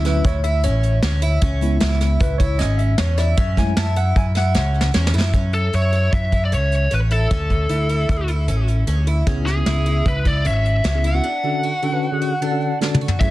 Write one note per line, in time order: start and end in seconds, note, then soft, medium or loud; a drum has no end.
0.00 0.20 D2 medium
0.05 0.23 F#3 soft
0.05 0.23 C#4 soft
0.05 0.40 E4 medium
0.05 0.23 E4 medium
0.05 0.26 B4 medium
0.05 snare soft
0.05 closed hi-hat medium
0.24 0.66 D2 medium
0.24 0.43 C#5 medium
0.24 kick loud
0.24 closed hi-hat medium
0.44 0.61 E4 medium
0.44 0.64 E5 medium
0.44 closed hi-hat medium
0.64 0.99 A1 medium
0.64 0.98 C#4 medium
0.64 1.58 C#5 medium
0.64 closed hi-hat medium
0.83 closed hi-hat medium
1.02 1.37 D2 medium
1.02 1.20 C#4 medium
1.02 snare loud
1.02 closed hi-hat medium
1.22 1.40 E4 medium
1.22 closed hi-hat medium
1.41 1.76 C#2 loud
1.41 1.76 C#4 medium
1.41 kick loud
1.41 closed hi-hat medium
1.62 2.17 G#3 medium
1.62 2.18 B3 medium
1.62 2.18 E4 medium
1.62 closed hi-hat medium
1.80 2.16 C#2 medium
1.80 1.98 E4 medium
1.80 snare loud
1.80 closed hi-hat medium
2.01 2.35 E4 medium
2.01 snare soft
2.01 closed hi-hat medium
2.20 2.61 C#2 loud
2.20 2.41 B4 medium
2.20 kick loud
2.20 closed hi-hat medium
2.38 2.57 E4 medium
2.38 2.59 C#5 medium
2.38 kick medium
2.38 closed hi-hat medium
2.59 2.94 G#1 loud
2.59 2.94 C#4 medium
2.59 2.79 D#5 medium
2.59 snare soft
2.59 closed hi-hat medium
2.78 2.99 E5 medium
2.78 closed hi-hat medium
2.98 3.33 E2 loud
2.98 3.16 C#4 medium
2.98 3.19 C#5 medium
2.98 snare loud
2.98 closed hi-hat medium
3.18 3.35 E4 medium
3.18 3.36 D5 medium
3.18 snare soft
3.18 closed hi-hat medium
3.37 3.72 F#2 loud
3.37 3.72 C#4 loud
3.37 3.58 E5 loud
3.37 kick loud
3.37 closed hi-hat medium
3.57 3.83 G#3 medium
3.57 3.83 A3 medium
3.57 3.84 E4 medium
3.57 3.78 G#5 loud
3.57 kick medium
3.57 snare soft
3.57 closed hi-hat medium
3.77 4.11 F#2 medium
3.77 3.94 E4 medium
3.77 3.98 A5 loud
3.77 snare loud
3.77 closed hi-hat medium
3.96 4.31 E4 medium
3.96 4.15 F#5 loud
3.96 closed hi-hat medium
4.16 4.56 F#2 medium
4.16 4.25 G#5 loud
4.16 kick loud
4.16 closed hi-hat medium
4.35 4.53 E4 medium
4.35 4.91 F#5 loud
4.35 snare soft
4.35 closed hi-hat medium
4.55 4.89 C#2 medium
4.55 4.90 C#4 medium
4.55 snare medium
4.81 snare medium
4.94 5.13 E2 medium
4.94 5.12 C#4 medium
4.94 snare medium
5.07 snare medium
5.14 5.32 F#2 medium
5.14 5.31 E4 medium
5.21 snare medium
5.33 5.68 F#2 medium
5.33 5.69 C#4 medium
5.33 kick medium
5.33 closed hi-hat medium
5.53 5.74 A4 medium
5.53 closed hi-hat medium
5.73 6.08 F#2 medium
5.73 5.91 E4 medium
5.73 6.14 C#5 medium
5.73 closed hi-hat medium
5.93 6.28 E4 medium
5.93 closed hi-hat soft
6.13 6.54 F#2 medium
6.13 6.44 E5 medium
6.13 kick medium
6.13 closed hi-hat medium
6.32 6.50 E4 medium
6.32 kick medium
6.32 closed hi-hat soft
6.45 6.53 D5 medium
6.52 6.87 C#2 medium
6.52 6.87 C#4 medium
6.52 6.93 C#5 medium
6.52 closed hi-hat medium
6.72 closed hi-hat soft
6.91 7.26 A1 medium
6.91 7.08 C#4 medium
6.91 6.99 B4 medium
6.91 closed hi-hat medium
7.11 7.28 E4 medium
7.11 8.30 A4 medium
7.11 closed hi-hat soft
7.31 7.65 D2 medium
7.31 7.66 C#4 medium
7.31 kick medium
7.31 closed hi-hat medium
7.50 kick medium
7.50 closed hi-hat soft
7.69 8.04 D2 medium
7.69 7.87 E4 medium
7.69 closed hi-hat medium
7.89 8.24 E4 medium
7.89 closed hi-hat soft
8.09 8.49 D2 medium
8.09 kick medium
8.09 closed hi-hat medium
8.28 8.46 E4 medium
8.28 closed hi-hat medium
8.47 8.82 A1 medium
8.47 8.83 C#4 medium
8.47 closed hi-hat medium
8.68 closed hi-hat soft
8.87 9.22 D2 medium
8.87 9.05 C#4 medium
8.87 closed hi-hat medium
9.07 9.25 E4 medium
9.07 closed hi-hat soft
9.26 9.61 C#2 medium
9.26 9.47 B3 medium
9.26 9.47 C#4 medium
9.26 9.62 C#4 medium
9.26 9.47 E4 medium
9.26 9.47 G#4 medium
9.26 kick loud
9.26 closed hi-hat medium
9.46 10.07 G#4 medium
9.46 snare soft
9.46 closed hi-hat soft
9.56 10.09 B3 medium
9.56 10.09 C#4 medium
9.56 10.09 E4 medium
9.56 10.10 G#4 medium
9.66 10.01 C#2 medium
9.66 9.84 E4 medium
9.66 snare medium
9.66 closed hi-hat medium
9.86 10.21 E4 medium
9.86 closed hi-hat soft
10.06 10.47 C#2 medium
10.06 10.27 B4 medium
10.06 kick medium
10.06 closed hi-hat medium
10.25 10.43 E4 medium
10.25 10.46 D5 medium
10.25 kick medium
10.25 closed hi-hat soft
10.45 10.80 G#1 medium
10.45 10.80 C#4 medium
10.45 10.86 E5 medium
10.45 closed hi-hat medium
10.65 closed hi-hat soft
10.84 11.19 C#2 medium
10.84 11.02 C#4 medium
10.84 11.06 E5 medium
10.84 snare medium
10.84 closed hi-hat medium
10.94 11.07 B3 medium
10.94 11.07 C#4 medium
10.94 11.08 E4 medium
10.94 11.08 G#4 medium
11.04 11.22 E4 medium
11.04 12.78 F#5 medium
11.04 closed hi-hat medium
11.14 11.24 B3 medium
11.14 11.24 C#4 medium
11.14 11.24 E4 medium
11.14 11.24 F#4 medium
11.24 11.59 D4 medium
11.43 11.70 D3 medium
11.43 11.70 C#4 medium
11.43 11.70 D4 medium
11.43 11.70 F#4 medium
11.43 11.70 A4 medium
11.63 11.81 F#4 medium
11.82 11.89 D3 medium
11.82 11.89 C#4 medium
11.82 11.89 D4 medium
11.82 12.18 F#4 medium
11.82 11.90 F#4 medium
11.82 11.90 A4 medium
11.92 12.06 D3 medium
11.92 12.06 C#4 medium
11.92 12.06 D4 medium
11.92 12.06 F#4 medium
11.92 12.06 B4 medium
12.11 12.32 D3 medium
12.11 12.32 C#4 medium
12.11 12.32 D4 medium
12.11 12.32 F#4 medium
12.11 12.32 G#4 medium
12.22 12.39 F#4 medium
12.41 12.48 D3 medium
12.41 12.48 C#4 medium
12.41 12.48 D4 medium
12.41 12.77 D4 medium
12.41 12.48 F#4 medium
12.41 12.49 A4 medium
12.51 12.71 D3 medium
12.51 12.71 C#4 medium
12.51 12.71 D4 medium
12.51 12.72 F#4 medium
12.51 12.72 A4 medium
12.81 13.07 D3 medium
12.81 13.07 C#4 medium
12.81 13.07 D4 medium
12.81 12.99 D4 medium
12.81 13.08 F#4 medium
12.81 13.08 A4 medium
12.81 snare soft
12.94 mid tom medium
13.01 13.18 F#4 medium
13.08 floor tom medium
13.20 13.31 F#2 medium
13.20 13.31 A3 medium
13.20 13.31 C#4 medium
13.20 13.31 E4 medium
13.20 13.31 G#4 medium
13.20 13.31 E5 medium
13.20 kick medium
13.20 closed hi-hat medium